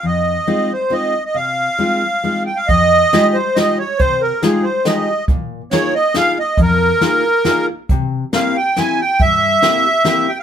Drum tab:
HH |------|------|x-x-x-|x-x-x-|
SD |------|------|--o-o-|--o-o-|
BD |------|------|o-----|o-----|

HH |x-x-x-|x-x-x-|x-x-x-|x-x-x-|
SD |--o-o-|--o-o-|--o-o-|--o-o-|
BD |o-----|o-----|o-----|o-----|